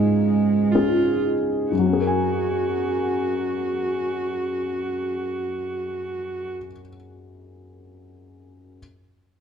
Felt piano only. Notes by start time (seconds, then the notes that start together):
Already playing: C#2 G#2 C#4 F4 G#4
0.74 C#4 F4 G#4
1.71 F#2
1.79 F#3
1.86 C#4
1.93 G#4
2.00 A#4
2.07 G#5